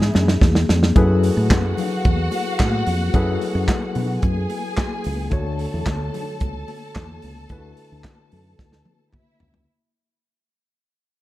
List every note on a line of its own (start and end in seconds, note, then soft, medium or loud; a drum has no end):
0.00 0.64 E3 medium
0.00 0.64 B3 medium
0.00 0.65 D4 medium
0.00 0.37 E4 loud
0.00 0.39 G#4 loud
0.00 0.65 G#4 medium
0.00 0.37 E5 loud
0.00 snare medium
0.14 0.37 F#2 loud
0.14 snare medium
0.14 muted conga medium
0.28 snare medium
0.41 0.64 E2 medium
0.41 kick loud
0.41 snare medium
0.41 high conga medium
0.55 snare medium
0.69 0.91 F2 loud
0.69 snare loud
0.69 high conga medium
0.83 snare medium
0.95 1.29 F#2 medium
0.95 3.09 F#3 medium
0.95 3.10 E4 medium
0.95 4.19 F#4 medium
0.95 3.10 G#4 medium
0.95 3.10 A4 medium
0.95 3.11 B4 medium
0.95 4.19 F#5 loud
0.95 kick loud
0.95 closed hi-hat medium
0.95 muted conga soft
1.23 open hi-hat medium
1.23 muted conga soft
1.37 1.48 A2 loud
1.50 1.73 F#2 medium
1.50 kick loud
1.50 snare loud
1.50 clap loud
1.50 closed hi-hat medium
1.50 high conga loud
1.77 open hi-hat medium
1.77 low conga medium
2.05 2.27 E2 loud
2.05 kick loud
2.05 closed hi-hat medium
2.05 muted conga medium
2.31 open hi-hat medium
2.31 muted conga medium
2.59 2.82 A2 medium
2.59 kick loud
2.59 snare loud
2.59 clap loud
2.59 closed hi-hat medium
2.59 high conga medium
2.87 3.09 F2 loud
2.87 open hi-hat medium
2.87 high conga medium
3.13 3.36 F#2 loud
3.13 5.28 F#3 medium
3.13 5.28 E4 medium
3.13 5.28 G#4 medium
3.13 5.29 A4 medium
3.13 5.29 B4 loud
3.13 kick loud
3.13 closed hi-hat medium
3.13 muted conga medium
3.41 open hi-hat medium
3.41 muted conga soft
3.55 3.66 F#2 loud
3.68 kick loud
3.68 snare loud
3.68 clap medium
3.68 closed hi-hat medium
3.68 high conga loud
3.95 4.17 B2 medium
3.95 open hi-hat medium
3.95 low conga medium
4.22 4.45 F#2 medium
4.22 5.30 G#4 medium
4.22 5.30 G#5 medium
4.22 kick loud
4.22 closed hi-hat medium
4.22 muted conga medium
4.50 open hi-hat medium
4.50 muted conga medium
4.77 kick loud
4.77 snare loud
4.77 clap loud
4.77 closed hi-hat medium
4.77 high conga medium
5.04 5.28 C#2 loud
5.04 open hi-hat medium
5.04 high conga medium
5.30 5.65 D2 loud
5.30 7.45 D3 medium
5.30 7.45 A3 medium
5.30 7.46 F#4 medium
5.30 9.09 A4 medium
5.30 7.46 C#5 loud
5.30 9.09 A5 medium
5.30 kick loud
5.30 closed hi-hat medium
5.30 muted conga soft
5.59 open hi-hat medium
5.59 muted conga soft
5.74 5.84 E2 loud
5.86 6.09 D2 medium
5.86 kick loud
5.86 snare loud
5.86 clap loud
5.86 closed hi-hat medium
5.86 high conga medium
6.14 open hi-hat medium
6.14 low conga medium
6.40 6.63 C#2 medium
6.40 kick loud
6.40 closed hi-hat medium
6.40 muted conga medium
6.68 open hi-hat medium
6.68 muted conga medium
6.95 7.18 E2 medium
6.95 kick loud
6.95 snare loud
6.95 clap medium
6.95 closed hi-hat medium
6.95 high conga medium
7.22 7.45 C#2 medium
7.22 open hi-hat medium
7.22 high conga medium
7.49 7.72 D2 loud
7.49 9.64 D3 medium
7.49 9.64 A3 medium
7.49 7.57 E4 medium
7.49 9.65 B4 medium
7.49 kick loud
7.49 closed hi-hat medium
7.49 muted conga medium
7.58 9.68 F#4 medium
7.77 open hi-hat medium
7.77 muted conga soft
7.92 8.02 D2 loud
8.04 kick loud
8.04 snare loud
8.04 clap medium
8.04 closed hi-hat medium
8.04 high conga medium
8.32 8.54 F#2 medium
8.32 open hi-hat medium
8.32 low conga medium
8.59 8.81 D2 medium
8.59 kick loud
8.59 snare medium
8.59 muted conga medium
8.72 snare medium
8.85 high tom medium
8.85 muted conga medium
9.13 9.67 E4 medium
9.13 9.66 E5 loud
9.13 kick loud
9.13 mid tom medium
9.13 high conga medium
9.40 9.64 C#2 loud
9.40 floor tom loud
9.40 high conga medium
9.54 floor tom medium